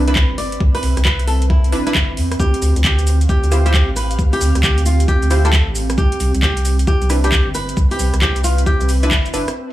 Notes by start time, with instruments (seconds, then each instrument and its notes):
Already playing: analog synth bass C2, ambient pad C4 B4 E5
0.08 synth stab D4 E4 B4, nylon-string guitar B4, closed hi-hat
0.16 kick, clap
0.30 analog synth bass G1
0.38 nylon-string guitar D5, open hi-hat
0.52 closed hi-hat
0.60 analog synth bass C2, kick
0.75 nylon-string guitar B4, open hi-hat
0.83 analog synth bass C2, open hi-hat
0.97 analog synth bass C2, cross-stick, closed hi-hat
1.05 nylon-string guitar B4, kick, clap
1.19 closed hi-hat
1.27 nylon-string guitar A4, open hi-hat
1.42 closed hi-hat
1.50 nylon-string guitar E4, kick
1.64 closed hi-hat
1.72 analog synth bass G1, synth stab D4 E4 B4, open hi-hat
1.87 synth stab D4 E4 B4, nylon-string guitar E4, closed hi-hat
1.95 analog synth bass G1, kick, clap
2.17 analog synth bass E2, open hi-hat
2.32 cross-stick, closed hi-hat
2.40 analog synth bass D2, nylon-string guitar G4, kick, shaker
2.54 ambient pad F5, closed hi-hat
2.62 analog synth bass D2, open hi-hat, shaker
2.67 ambient pad G4
2.76 analog synth bass D2, closed hi-hat, shaker
2.84 nylon-string guitar G4, kick, clap, shaker
2.99 closed hi-hat, shaker
3.07 open hi-hat, shaker
3.21 closed hi-hat, shaker
3.29 nylon-string guitar G4, kick, shaker
3.43 analog synth bass D2, closed hi-hat, shaker
3.52 synth stab E4 F4 G4 C5, cross-stick, open hi-hat, shaker
3.66 synth stab E4 F4 G4 C5, nylon-string guitar G4, closed hi-hat, shaker
3.74 kick, clap, shaker
3.88 analog synth bass A1
3.96 nylon-string guitar B4, open hi-hat, shaker
4.11 closed hi-hat, shaker
4.19 analog synth bass D2, kick, shaker
4.33 nylon-string guitar G4, open hi-hat, shaker
4.41 analog synth bass D2, open hi-hat, shaker
4.55 analog synth bass D2, cross-stick, closed hi-hat, shaker
4.63 nylon-string guitar G4, kick, clap, shaker
4.78 closed hi-hat, shaker
4.86 nylon-string guitar F4, open hi-hat, shaker
5.00 closed hi-hat, shaker
5.08 nylon-string guitar G4, kick, shaker
5.23 analog synth bass D2, closed hi-hat, shaker
5.31 synth stab E4 F4 G4 C5, open hi-hat, shaker
5.45 synth stab E4 F4 G4 C5, nylon-string guitar A4, closed hi-hat, shaker
5.53 kick, clap, shaker
5.67 analog synth bass A1
5.75 open hi-hat, shaker
5.90 cross-stick, closed hi-hat, shaker
5.98 analog synth bass C2, ambient pad C4, nylon-string guitar G4, kick, shaker
6.12 closed hi-hat
6.20 analog synth bass C2, open hi-hat, shaker
6.26 ambient pad B4 E5
6.34 analog synth bass C2, closed hi-hat, shaker
6.43 nylon-string guitar G4, kick, clap, shaker
6.57 closed hi-hat, shaker
6.65 open hi-hat, shaker
6.79 closed hi-hat, shaker
6.87 nylon-string guitar G4, kick, shaker
7.02 analog synth bass C2, closed hi-hat, shaker
7.10 synth stab D4 E4 B4, cross-stick, open hi-hat, shaker
7.24 synth stab D4 E4 B4, nylon-string guitar G4, closed hi-hat, shaker
7.32 kick, clap, shaker
7.46 analog synth bass G1
7.55 nylon-string guitar B4, open hi-hat, shaker
7.69 closed hi-hat, shaker
7.77 analog synth bass C2, kick, shaker
7.91 nylon-string guitar G4, open hi-hat, shaker
7.99 analog synth bass C2, open hi-hat, shaker
8.14 analog synth bass C2, cross-stick, closed hi-hat, shaker
8.22 nylon-string guitar G4, kick, clap, shaker
8.36 closed hi-hat, shaker
8.44 nylon-string guitar F4, open hi-hat, shaker
8.58 closed hi-hat, shaker
8.66 nylon-string guitar G4, kick, shaker
8.81 analog synth bass C2, closed hi-hat, shaker
8.89 open hi-hat, shaker
9.03 synth stab D4 E4 B4, nylon-string guitar E4, closed hi-hat, shaker
9.11 analog synth bass G1, kick, clap, shaker
9.26 closed hi-hat, shaker
9.34 analog synth bass G1, synth stab D4 E4 B4, open hi-hat, shaker
9.48 cross-stick, closed hi-hat, shaker
9.56 shaker